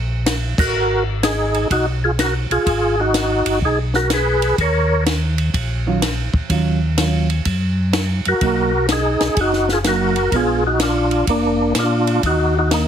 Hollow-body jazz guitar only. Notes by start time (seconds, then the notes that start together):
5.87 D#3 F#3 C#4 F4
6.50 D#3 F#3 C#4 F4
6.97 D#3 F#3 C#4 F4
8.42 F#3 A#3 D#4
9.85 F#3 A#3 D#4
10.33 G#3 B3 D4